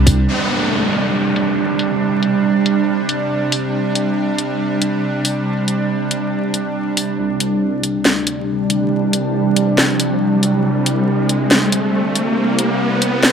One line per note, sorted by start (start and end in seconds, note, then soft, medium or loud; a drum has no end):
0.00 0.24 C3 medium
0.00 0.24 G3 medium
0.00 0.27 D4 medium
0.07 0.27 C2 loud
0.07 kick medium
0.07 open hi-hat medium
0.28 7.15 C3 medium
0.28 7.15 G3 medium
0.28 7.15 D4 medium
0.28 crash medium
0.28 downlifter medium
0.50 closed hi-hat medium
0.93 closed hi-hat medium
1.36 closed hi-hat medium
1.79 open hi-hat medium
2.23 closed hi-hat medium
2.66 closed hi-hat medium
3.09 closed hi-hat medium
3.52 open hi-hat medium
3.95 closed hi-hat medium
4.38 closed hi-hat medium
4.82 closed hi-hat medium
5.25 open hi-hat medium
5.68 closed hi-hat medium
6.11 closed hi-hat medium
6.54 closed hi-hat medium
6.97 open hi-hat medium
7.19 8.04 C2 loud
7.19 13.32 C3 medium
7.19 13.32 G3 medium
7.19 10.61 D4 medium
7.19 riser medium
7.40 closed hi-hat medium
7.83 closed hi-hat medium
8.05 8.90 D2 medium
8.05 snare loud
8.27 closed hi-hat medium
8.70 closed hi-hat medium
8.92 9.76 C2 medium
9.13 closed hi-hat medium
9.56 closed hi-hat medium
9.78 10.63 C2 medium
9.78 snare loud
10.00 closed hi-hat medium
10.43 closed hi-hat medium
10.64 11.49 C2 medium
10.64 13.32 C4 medium
10.86 closed hi-hat medium
11.29 closed hi-hat medium
11.51 12.35 D2 loud
11.51 snare loud
11.72 closed hi-hat medium
12.16 closed hi-hat medium
12.37 13.22 C2 medium
12.59 closed hi-hat medium
13.02 closed hi-hat medium
13.23 snare loud